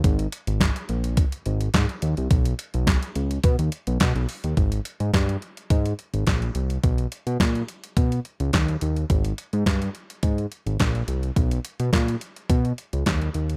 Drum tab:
HH |xxxxxxxxxxxxxxxx|xxxxxxxxxxxxxxox|xxxxxxxxxxxxxxxx|xxxxxxxxxxxxxxxx|
CP |----x-------x---|----x-------x---|----x-------x---|----x-------x---|
SD |----o-------o---|----o-------o---|----o-------o---|----o-------o---|
BD |o---o---o---o---|o---o---o---o---|o---o---o---o---|o---o---o---o---|

HH |xxxxxxxxxxxxxxxx|xxxxxxxxxxxxxxxx|
CP |----x-------x---|----x-------x---|
SD |----o-------o---|----o-------o---|
BD |o---o---o---o---|o---o---o---o---|